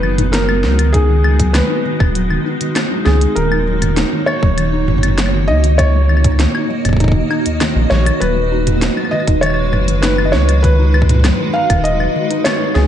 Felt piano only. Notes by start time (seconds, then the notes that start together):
Already playing: B4
0.32 A#4
0.93 G#4
1.53 B4
3.05 G#4
3.35 A#4
4.26 C#5
5.48 D#5
5.78 C#5
7.90 C#5
8.20 B4
9.11 D#5
9.41 C#5
10.02 B4
10.25 D#5
10.32 C#5
10.63 B4
11.53 F5
11.84 D#5
12.44 C#5
12.74 G#4